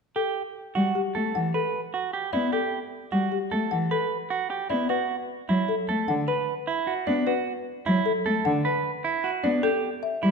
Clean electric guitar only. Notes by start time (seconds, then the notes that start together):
0.16 G4
0.75 F#4
1.15 A4
1.54 B4
1.94 F#4
2.13 G4
2.33 E4
2.53 G4
3.12 F#4
3.51 A4
3.91 B4
4.30 F#4
4.50 G4
4.70 E4
4.90 F#4
5.49 E4
5.89 A4
6.28 B4
6.67 E4
6.87 F#4
7.07 D4
7.27 F#4
7.86 E4
8.26 A4
8.65 B4
9.04 E4
9.24 F#4
9.44 D4
9.63 G4
10.23 E4